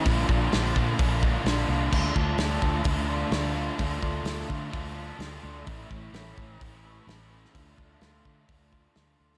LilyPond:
<<
  \new Staff \with { instrumentName = "Overdriven electric guitar" } { \time 4/4 \key d \minor \tempo 4 = 128 <bes, d bes d' f'>8 <bes d' f'>8 <d bes d' f'>8 <bes d' f'>8 <bes, d bes d' f'>8 <bes d' f'>8 <d bes d' f'>8 <bes d' f'>8 | <d a d' f'>8 <a d' f'>8 <d a d' f'>8 <a d' f'>8 <d a d' f'>8 <a d' f'>8 <d a d' f'>8 <a d' f'>8 | <d a d' f'>8 <a d' f'>8 <d a d' f'>8 <a d' f'>8 <d a d' f'>8 <a d' f'>8 <d a d' f'>8 <a d' f'>8 | <a, e a cis' e'>8 <a cis' e'>8 <e a cis' e'>8 <a cis' e'>8 <a, e a cis' e'>8 <a cis' e'>8 <e a cis' e'>8 <a cis' e'>8 |
<d a d' f'>8 <a d' f'>8 <d a d' f'>8 <a d' f'>8 <d a d' f'>8 <a d' f'>8 <d a d' f'>8 <a d' f'>8 | }
  \new Staff \with { instrumentName = "Fingered electric bass" } { \clef bass \time 4/4 \key d \minor bes,,8 bes,,8 bes,,8 bes,8 bes,,4 bes,,8 c,8 | d,8 d,8 d,8 d,8 d,4 d,4 | d,8 d,8 d,8 d8 d,4 d,8 d,8 | a,,8 a,,8 a,,8 a,,8 a,,4 a,,4 |
d,8 d,8 d,8 d8 d,4 d,8 d,8 | }
  \new DrumStaff \with { instrumentName = "Drums" } \drummode { \time 4/4 <hho bd>8 bd8 <hho sn>8 bd8 <hho bd>8 bd8 <hho sn>4 | <cymc bd>8 bd8 <hho sn>8 bd8 <hho bd>4 <hho sn>4 | <hho bd>8 bd8 <hho sn>8 bd8 <hho bd>4 <hho sn>4 | <hho bd>8 bd8 <hho sn>8 bd8 <hho bd>4 <hho sn>8. sn16 |
<hho bd>8 bd8 <hho sn>8 bd8 <hho bd>8 bd8 <hho sn>8. sn16 | }
>>